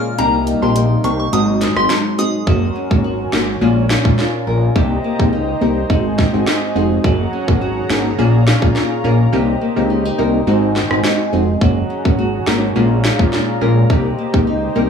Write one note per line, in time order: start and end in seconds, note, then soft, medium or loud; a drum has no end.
0.00 0.25 A#2 medium
0.00 0.16 C#3 medium
0.00 0.18 G#3 medium
0.00 0.16 A#3 medium
0.00 1.31 A#3 medium
0.00 0.16 C#4 medium
0.00 0.17 F4 medium
0.00 0.25 F4 medium
0.00 0.17 G#4 medium
0.00 0.18 A#4 medium
0.18 0.54 C2 loud
0.18 2.45 C3 medium
0.18 1.39 C3 medium
0.18 1.32 G3 medium
0.18 0.38 A#3 medium
0.18 0.38 C4 medium
0.18 2.45 D#4 medium
0.18 0.39 D#4 medium
0.18 0.39 G4 loud
0.18 1.39 A#4 medium
0.18 0.29 A#5 loud
0.18 closed hi-hat medium
0.18 high woodblock medium
0.47 1.03 D#4 medium
0.47 closed hi-hat medium
0.47 cabasa medium
0.62 0.96 A#1 medium
0.62 0.81 A#3 medium
0.62 0.81 C4 medium
0.62 0.81 D#4 medium
0.62 0.81 G4 medium
0.62 0.72 C6 medium
0.62 high woodblock medium
0.76 1.39 A#3 medium
0.76 closed hi-hat medium
1.04 1.28 C2 loud
1.04 1.24 A#3 medium
1.04 1.24 C4 medium
1.04 1.39 D#4 medium
1.04 1.24 D#4 medium
1.04 1.24 G4 medium
1.04 1.15 C#6 medium
1.04 closed hi-hat medium
1.04 cabasa medium
1.04 high woodblock medium
1.19 1.29 C#6 medium
1.33 1.68 G#1 loud
1.33 2.53 G#2 medium
1.33 2.46 F#3 medium
1.33 1.73 G#3 medium
1.33 2.46 G#3 medium
1.33 1.73 C4 medium
1.33 1.73 D#4 medium
1.33 1.73 F#4 loud
1.33 1.44 D#6 medium
1.33 closed hi-hat medium
1.33 high woodblock medium
1.61 2.18 G#4 medium
1.61 snare medium
1.61 closed hi-hat medium
1.61 cabasa medium
1.76 1.87 G#1 medium
1.76 2.15 G#3 medium
1.76 2.15 C4 medium
1.76 2.15 D#4 medium
1.76 2.15 F#4 medium
1.76 1.86 C6 medium
1.76 cross-stick loud
1.90 2.53 D#4 medium
1.90 snare loud
1.90 closed hi-hat medium
1.90 high woodblock medium
2.18 2.45 G#3 medium
2.18 2.45 C4 medium
2.18 2.45 D#4 medium
2.18 2.45 F#4 medium
2.18 3.07 G#4 medium
2.18 2.29 D#6 medium
2.18 closed hi-hat medium
2.18 cabasa medium
2.47 2.70 F#1 loud
2.47 3.67 F#3 medium
2.47 2.67 G#3 medium
2.47 2.67 A#3 medium
2.47 2.67 C#4 medium
2.47 3.60 F#4 medium
2.47 2.67 F#4 loud
2.47 3.60 A#4 medium
2.47 4.73 C#5 medium
2.47 4.73 G#5 medium
2.47 kick loud
2.76 3.67 C#4 medium
2.90 3.25 G#1 medium
2.90 3.10 G#3 medium
2.90 3.10 A#3 medium
2.90 3.10 C#4 medium
2.90 3.10 F#4 medium
2.90 kick medium
3.04 3.67 F#4 medium
3.33 3.56 G#1 medium
3.33 3.53 G#3 medium
3.33 3.53 A#3 medium
3.33 3.53 C#4 medium
3.33 3.53 F#4 medium
3.33 4.47 A#4 medium
3.33 snare loud
3.61 3.97 A#1 loud
3.61 4.82 A#2 medium
3.61 4.01 G#3 medium
3.61 4.02 A#3 medium
3.61 4.02 C#4 medium
3.61 4.75 F4 medium
3.61 4.02 F4 loud
3.61 4.75 A#4 medium
3.90 4.82 C#4 medium
3.90 snare loud
4.05 4.16 A#1 medium
4.05 4.24 G#3 medium
4.05 4.24 A#3 medium
4.05 4.24 C#4 medium
4.05 4.24 F4 medium
4.05 kick medium
4.19 4.82 F4 medium
4.19 snare medium
4.47 4.70 A#1 loud
4.47 4.82 A#4 medium
4.75 4.99 C2 loud
4.75 5.96 C3 medium
4.75 4.96 A#3 medium
4.75 4.96 C4 medium
4.75 4.96 D#4 medium
4.75 5.89 G4 medium
4.75 4.96 G4 loud
4.75 7.02 C5 medium
4.75 5.89 D#5 medium
4.75 5.89 A#5 medium
4.75 kick loud
5.04 5.96 A#3 medium
5.19 5.54 C#2 medium
5.19 5.38 A#3 medium
5.19 5.38 C4 medium
5.19 5.38 D#4 medium
5.19 5.38 G4 medium
5.19 kick medium
5.33 5.96 D#4 medium
5.61 5.85 C2 medium
5.61 5.81 A#3 medium
5.61 5.81 C4 medium
5.61 5.81 D#4 medium
5.61 5.81 G4 medium
5.61 5.96 A#4 medium
5.90 6.25 G#1 loud
5.90 7.10 G#2 medium
5.90 6.30 G#3 medium
5.90 6.30 C4 medium
5.90 6.30 D#4 medium
5.90 7.03 F#4 medium
5.90 6.30 F#4 loud
5.90 7.03 D#5 medium
5.90 7.03 G#5 medium
5.90 kick medium
6.19 7.10 C4 medium
6.19 kick medium
6.19 snare medium
6.33 6.45 G#1 medium
6.33 6.72 G#3 medium
6.33 6.72 C4 medium
6.33 6.73 D#4 medium
6.33 6.73 F#4 medium
6.47 7.10 D#4 medium
6.47 snare loud
6.75 6.99 F1 loud
6.75 7.02 G#3 medium
6.75 7.02 C4 medium
6.75 7.02 D#4 medium
6.75 7.02 F#4 medium
6.75 7.64 G#4 medium
7.04 7.28 F#1 loud
7.04 8.25 F#3 medium
7.04 7.24 A#3 medium
7.04 7.24 C#4 medium
7.04 7.24 F#4 medium
7.04 9.31 G#4 medium
7.04 7.24 G#4 loud
7.04 8.17 C#5 medium
7.04 8.18 F#5 medium
7.04 10.44 A#5 medium
7.04 kick loud
7.33 8.25 C#4 medium
7.48 7.82 G#1 medium
7.48 7.67 A#3 medium
7.48 7.67 C#4 medium
7.48 7.67 F#4 medium
7.48 7.67 G#4 medium
7.48 kick medium
7.61 8.25 F#4 medium
7.90 8.13 G#1 medium
7.90 8.10 A#3 medium
7.90 8.10 C#4 medium
7.90 8.10 F#4 medium
7.90 8.10 G#4 medium
7.90 9.04 A#4 medium
7.90 snare loud
8.18 8.54 A#1 loud
8.18 9.39 A#2 medium
8.18 8.59 A#3 medium
8.18 8.59 C#4 medium
8.18 8.59 F4 medium
8.18 8.59 G#4 loud
8.18 9.32 C#5 medium
8.18 9.32 F5 medium
8.47 9.39 C#4 medium
8.47 snare loud
8.62 8.73 A#1 medium
8.62 9.01 A#3 medium
8.62 9.01 C#4 medium
8.62 9.01 F4 medium
8.62 9.01 G#4 medium
8.62 kick medium
8.76 9.39 F4 medium
8.76 snare medium
9.04 9.28 A#1 loud
9.04 9.31 A#3 medium
9.04 9.31 C#4 medium
9.04 9.31 F4 medium
9.04 9.31 G#4 medium
9.04 9.39 A#4 medium
9.32 9.56 C2 loud
9.32 10.53 C3 medium
9.32 9.53 A#3 medium
9.32 9.53 C4 medium
9.32 9.53 D#4 medium
9.32 10.46 G4 medium
9.32 9.53 G4 loud
9.32 11.59 C5 medium
9.32 11.59 D#5 medium
9.61 10.53 A#3 medium
9.76 10.11 C#2 medium
9.76 9.95 A#3 medium
9.76 9.95 C4 medium
9.76 9.95 D#4 medium
9.76 9.96 G4 medium
9.90 10.05 C#4 medium
10.05 10.53 D#4 medium
10.18 10.42 C2 medium
10.18 10.38 A#3 medium
10.18 10.38 C4 medium
10.18 10.39 D#4 medium
10.18 10.39 G4 medium
10.18 10.53 A#4 medium
10.47 10.83 G#1 loud
10.47 11.67 G#2 medium
10.47 10.87 G#3 medium
10.47 10.87 C4 medium
10.47 10.87 D#4 medium
10.47 11.60 F#4 medium
10.47 10.87 F#4 loud
10.47 11.60 G#5 medium
10.76 11.67 C4 medium
10.76 snare medium
10.91 11.02 G#1 medium
10.91 11.30 G#3 medium
10.91 11.30 C4 medium
10.91 11.30 D#4 medium
10.91 11.30 F#4 medium
10.91 cross-stick medium
11.04 11.67 D#4 medium
11.04 snare loud
11.33 11.56 F1 loud
11.33 11.59 G#3 medium
11.33 11.59 C4 medium
11.33 11.59 D#4 medium
11.33 11.59 F#4 medium
11.33 12.22 G#4 medium
11.61 11.85 F#1 loud
11.61 12.82 F#3 medium
11.61 11.81 G#3 medium
11.61 11.81 A#3 medium
11.61 11.81 C#4 medium
11.61 11.82 F#4 loud
11.61 12.75 G#4 medium
11.61 13.88 C#5 medium
11.61 12.75 F#5 medium
11.61 14.90 A#5 medium
11.61 kick loud
11.90 12.82 C#4 medium
12.05 12.39 G#1 medium
12.05 12.24 G#3 medium
12.05 12.24 A#3 medium
12.05 12.24 C#4 medium
12.05 12.24 F#4 medium
12.05 kick medium
12.19 12.82 F#4 medium
12.47 12.70 G#1 medium
12.47 12.67 G#3 medium
12.47 12.67 A#3 medium
12.47 12.67 C#4 medium
12.47 12.67 F#4 medium
12.47 13.61 A#4 medium
12.47 snare loud
12.75 13.11 A#1 loud
12.75 13.96 A#2 medium
12.75 13.16 G#3 medium
12.75 13.16 A#3 medium
12.75 13.16 C#4 medium
12.75 13.16 F4 loud
12.75 13.89 G#4 medium
12.75 13.89 F5 medium
13.04 13.96 C#4 medium
13.04 snare loud
13.19 13.30 A#1 medium
13.19 13.58 G#3 medium
13.19 13.58 A#3 medium
13.19 13.58 C#4 medium
13.19 13.58 F4 medium
13.19 kick medium
13.33 13.96 F4 medium
13.33 snare medium
13.61 13.85 A#1 loud
13.61 13.88 G#3 medium
13.61 13.88 A#3 medium
13.61 13.88 C#4 medium
13.61 13.88 F4 medium
13.61 13.96 A#4 medium
13.90 14.13 C2 loud
13.90 14.90 C3 medium
13.90 14.10 A#3 medium
13.90 14.10 C4 medium
13.90 14.10 D#4 medium
13.90 14.90 G4 medium
13.90 14.10 G4 loud
13.90 14.90 C5 medium
13.90 14.90 D#5 medium
13.90 kick loud
14.18 14.90 A#3 medium
14.33 14.68 C#2 medium
14.33 14.52 A#3 medium
14.33 14.52 C4 medium
14.33 14.53 D#4 medium
14.33 14.53 G4 medium
14.33 kick medium
14.47 14.90 D#4 medium
14.75 14.90 C2 loud
14.75 14.90 A#3 medium
14.75 14.90 C4 medium
14.75 14.90 D#4 medium
14.75 14.90 G4 medium
14.75 14.90 A#4 medium